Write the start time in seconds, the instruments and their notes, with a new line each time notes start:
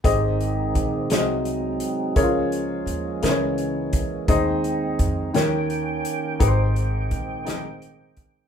0.04 upright bass G#1, grand piano G#2 G4 G#4 C5 D#5, tonewheel organ D#3 G#3 C4 D#4, kick, closed hi-hat
0.41 closed hi-hat
0.75 upright bass A#1, kick, closed hi-hat
1.10 upright bass C2, grand piano C3 F#4 G#4 C5 D5, tonewheel organ F#3 G#3 D#4, snare, closed hi-hat
1.18 grand piano D#5
1.45 closed hi-hat
1.80 closed hi-hat
2.15 upright bass C#2, grand piano C#3 E4 G#4 A#4 C#5, tonewheel organ F3 A#3 C#4, kick, closed hi-hat
2.22 grand piano F4
2.52 closed hi-hat
2.86 upright bass D#2, closed hi-hat
3.22 upright bass C#2, grand piano C#3 E4 G#4 A#4 C5, tonewheel organ E3 A#3, snare, closed hi-hat
3.29 grand piano C#5
3.58 closed hi-hat
3.93 kick, closed hi-hat
4.28 upright bass D#2, grand piano D#3 D#4 G#4 C5 D#5, tonewheel organ C4 D#4, kick, closed hi-hat
4.64 closed hi-hat
4.99 upright bass F2, kick, closed hi-hat
5.34 upright bass D#2, grand piano D#3 D#4 G4 A#4 C#5, tonewheel organ D#3 A#3 C#4 G5, snare, closed hi-hat
5.70 closed hi-hat
6.05 closed hi-hat
6.40 upright bass G#1, grand piano G#2 D#4 G4 G#4 B4, tonewheel organ G#3 C4, kick, closed hi-hat
6.47 grand piano C5
6.76 closed hi-hat
7.11 upright bass A#1, kick, closed hi-hat
7.45 grand piano D#4 G4 G#4 D#5, snare, closed hi-hat
7.82 closed hi-hat
8.17 kick, closed hi-hat